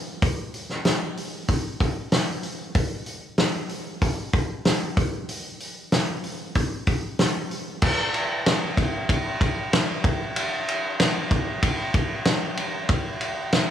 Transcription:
0.22 kick, open hi-hat
0.54 open hi-hat
0.69 snare
0.85 snare, open hi-hat
1.17 open hi-hat
1.48 kick, open hi-hat
1.80 kick, open hi-hat
2.12 snare, open hi-hat
2.43 open hi-hat
2.75 kick, open hi-hat
3.06 open hi-hat
3.38 snare, open hi-hat
3.69 open hi-hat
4.02 kick, open hi-hat
4.33 kick, open hi-hat
4.65 snare, open hi-hat
4.97 kick, open hi-hat
5.29 open hi-hat
5.60 open hi-hat
5.92 snare, open hi-hat
6.24 open hi-hat
6.55 kick, open hi-hat
6.87 kick, open hi-hat
7.19 snare, open hi-hat
7.51 open hi-hat
7.82 kick, crash
8.14 ride
8.46 snare, ride
8.77 kick, ride
9.09 kick, ride
9.41 kick, ride
9.73 snare, ride
10.04 kick, ride
10.36 ride
10.68 ride
11.00 snare, ride
11.31 kick, ride
11.63 kick, ride
11.94 kick, ride
12.25 snare, ride
12.57 ride
12.89 kick, ride
13.21 ride
13.53 snare, ride

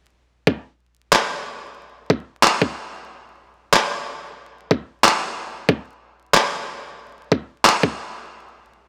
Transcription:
0.47 kick
1.13 clap
2.10 kick
2.43 clap
2.62 kick
3.73 clap
4.71 kick
5.04 clap
5.69 kick
6.34 clap
7.32 kick
7.65 clap
7.83 kick

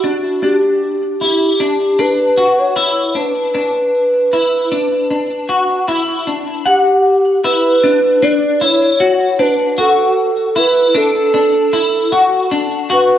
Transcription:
Already playing: F#4
0.04 D4
0.43 D4 G4
1.21 E4 G4
1.60 D4
1.99 D4 B4
2.37 F#4
2.59 C#5
2.76 E4
3.11 C#5
3.15 D4 B4
3.55 D4
4.33 E4
4.71 D4
5.10 D4
5.49 F#4
5.88 E4
6.27 D4
6.66 G4 F#5
7.44 E4 B4
7.83 D4
8.22 D4 D5
8.61 E4 C#5
9.00 F#4
9.39 D4 B4
9.78 F#4 A4
10.56 E4 B4
10.95 D4 A4
11.34 D4
11.73 E4
12.12 F#4
12.52 D4
12.90 F#4 B4

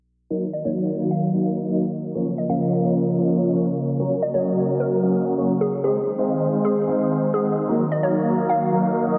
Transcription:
0.30 D#3 F#3 A#3 D#4 F#4 A#4 D#5
0.53 D#5
0.65 F#3 A#3 D#4 A#4 C#5 F5
0.99 F#3 A#3 D#4 A#4 F5
1.11 F5
1.34 F#3 A#3 D#4 A#4 F5
1.69 F#3 A#3 D#4 A#4 D#5
2.15 C#3 F3 A#3 C#4 F4 A#4 C#5
2.38 D#5
2.49 F3 A#3 C#4 A#4 D#5 F5
2.84 F3 A#3 C#4 A#4 D#5
3.19 F3 A#3 C#4 A#4 D#5
3.53 F3 A#3 C#4 A#4 C#5
3.99 F#3 A#3 C#4 F#4 A#4 C#5
4.22 D#5
4.34 F#3 A#3 C#4 A#4 C#5 D#5
4.69 F#3 A#3 C#4 A#4 D#5
4.80 A#4
5.03 F#3 A#3 C#4 A#4 D#5
5.38 F#3 A#3 C#4 A#4 C#5
5.61 G#4
5.84 D#3 G#3 C4 D#4 G#4 C5 D#5
6.19 G#3 C4 D#4 C5 F5
6.53 G#3 C4 D#4 C5 F5
6.65 G#4
6.88 G#3 C4 D#4 C5 F5
7.11 G#3 C4 D#4 C5 F5
7.34 G#3 C4 D#4 G#4 C5 F#5
7.69 F#3 A#3 D#4 F#4 A#4 D#5
7.92 D#5
8.03 F#3 A#3 D#4 A#4 C#5 F5
8.38 F#3 A#3 D#4 A#4 F5
8.49 F5
8.72 F#3 A#3 D#4 A#4 F5
9.07 F#3 A#3 D#4 A#4 D#5

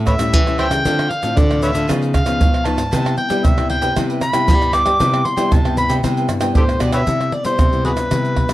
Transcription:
Already playing: A2 G3 C#4 E4
0.06 B4 C#5 E5, muted cavaquinho stroke, pandeiro, tamborim, shaker, surdo
0.18 A2 G3 C#4 E4 A4 C#5 E5, pandeiro, tamborim, shaker
0.33 E3 G4 A4 C#5 E5, pandeiro, shaker, surdo
0.47 G3 C#4 E4, pandeiro, tamborim, shaker
0.58 G4 A4 C5 C#5 E5 G5, pandeiro, tamborim
0.70 C#3 A4 C#5 E5, pandeiro, tamborim, shaker
0.85 D3 A3 C4 D4 F4 A4 C5 F5, pandeiro, shaker, surdo
0.98 A4 C5 F5, pandeiro, tamborim, shaker
1.10 F5, muted cavaquinho stroke, pandeiro
1.22 A2 A3 C4 F4 A4 C5 F5, pandeiro, shaker
1.37 A2 D3 D5, pandeiro, tamborim, shaker, surdo
1.50 A3 C4 F4 A4 C5 F5, pandeiro, tamborim, shaker
1.61 D4 A4 B4 C5 C#5 E5 F5, pandeiro, shaker
1.73 D3 A4 C5 F5, pandeiro, shaker
1.88 C#3 F3 B3 D#4 F4 B4 C#5 F5, pandeiro, tamborim, shaker, surdo
2.02 B4 C#5 F5, pandeiro, shaker
2.13 F5, muted cavaquinho stroke, pandeiro, tamborim, shaker, surdo
2.25 C#3 F3 B3 D#4 B4 C#5 F5, pandeiro, tamborim, shaker
2.40 G#2 F4 B4 C#5 F5, pandeiro, shaker, surdo
2.54 pandeiro, tamborim, shaker
2.65 F3 B3 D#4 F4 B4 C#5 F5 A5, pandeiro, tamborim, shaker
2.77 G#2 B4 C#5 F5, pandeiro, tamborim, shaker
2.91 C3 G3 B3 E4 B4 C5 G5, pandeiro, shaker, surdo
3.05 B4 C5 G5, pandeiro, tamborim, shaker
3.16 G5, muted cavaquinho stroke, pandeiro
3.29 G3 B3 E4 B4 C5 G5, pandeiro, shaker
3.45 G2 C3 E5, pandeiro, tamborim, shaker, surdo
3.57 G3 B3 E4 B4 C5 G5, pandeiro, tamborim, shaker
3.69 E4 B4 C5 G5, pandeiro
3.81 C3 B4 C5 G5, pandeiro, shaker
3.96 C3 G3 B3 E4 B4 C5 G5, pandeiro, tamborim, shaker, surdo
4.09 B4 C5 G5, pandeiro, shaker
4.21 B5, muted cavaquinho stroke, pandeiro, tamborim, shaker
4.33 C3 G3 B3 E4 B4 C5 G5, pandeiro, tamborim, shaker
4.48 G2 G3 E4 B4 C5 G5, pandeiro, shaker, surdo
4.62 pandeiro, tamborim, shaker
4.73 G3 B3 E4 B4 C5 G5 D6, pandeiro, tamborim, shaker
4.85 G3 B4 C5 G5, pandeiro, tamborim, shaker
4.99 C3 G3 B3 E4 B4 C5 G5, pandeiro, shaker, surdo
5.13 B4 C5 G5, pandeiro, tamborim, shaker
5.25 C6, muted cavaquinho stroke, pandeiro
5.36 G3 B3 E4 B4 C5 G5, pandeiro, shaker
5.51 G2 C3 A5, pandeiro, tamborim, shaker, surdo
5.65 G3 B3 E4 B4 C5 G5, pandeiro, tamborim, shaker
5.77 E4 B4 C5 G5 B5, pandeiro, shaker
5.89 C3 B4 C5 G5, pandeiro, shaker
6.03 C3 G3 B3 E4 B4 C5 G5, pandeiro, tamborim, shaker, surdo
6.17 B4 C5 G5, pandeiro, shaker
6.29 G2, muted cavaquinho stroke, pandeiro, tamborim, shaker
6.41 G3 B3 E4 B4 C5 G5, pandeiro, tamborim, shaker
6.55 G2 A2 E4 G4 A4 B4 C5 G5, pandeiro, shaker, surdo
6.69 pandeiro, tamborim, shaker
6.80 B2 G3 B3 E4 B4 C5 D5 G5, pandeiro, tamborim, shaker
6.92 B4 C5 C#5 E5 G5, pandeiro, tamborim, shaker
7.07 C3 G3 B3 E4, pandeiro, shaker, surdo
7.21 pandeiro, tamborim, shaker
7.32 D5, pandeiro
7.45 G3 B3 E4 C5, pandeiro, shaker
7.59 G2 C3, pandeiro, tamborim, shaker, surdo
7.73 G3 B3 E4, pandeiro, shaker
7.85 F#4 G#4 B4, pandeiro
7.97 C3, pandeiro, tamborim, shaker
8.11 C3 G3 B3 E4, pandeiro, tamborim, shaker, surdo
8.25 pandeiro, shaker
8.36 pandeiro, tamborim, surdo
8.49 C3 G3 B3 E4, pandeiro, tamborim, shaker

